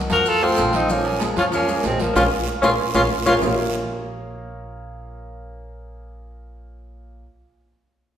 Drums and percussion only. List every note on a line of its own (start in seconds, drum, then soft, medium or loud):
0.10 high conga soft
0.10 high timbale medium
0.10 short guiro medium
0.10 maracas soft
0.25 long guiro medium
0.25 maracas medium
0.42 high conga soft
0.42 high timbale medium
0.57 high conga medium
0.57 high timbale medium
0.57 short guiro medium
0.57 maracas medium
0.73 short guiro medium
0.73 maracas soft
0.88 high conga soft
0.88 long guiro medium
0.88 maracas medium
1.05 high conga soft
1.05 high timbale medium
1.20 high conga loud
1.20 high timbale medium
1.20 short guiro medium
1.20 maracas medium
1.37 high conga soft
1.37 high timbale medium
1.37 short guiro medium
1.37 maracas soft
1.52 high conga soft
1.52 low conga medium
1.52 high timbale medium
1.52 long guiro medium
1.52 maracas medium
1.68 high conga soft
1.68 maracas medium
1.84 high conga medium
1.84 high timbale medium
1.84 low timbale medium
1.84 short guiro medium
1.84 maracas medium
1.99 high conga medium
1.99 short guiro medium
1.99 maracas soft
2.15 high conga loud
2.15 high timbale loud
2.15 long guiro medium
2.15 maracas medium
2.63 high conga loud
2.63 high timbale medium
2.63 long guiro loud
2.63 maracas medium
2.95 high conga medium
2.95 high timbale medium
2.95 long guiro medium
2.95 maracas medium
3.26 high conga loud
3.26 high timbale loud
3.26 long guiro loud
3.26 maracas loud
3.42 low conga loud
3.42 low timbale loud
3.42 long guiro medium
3.42 maracas medium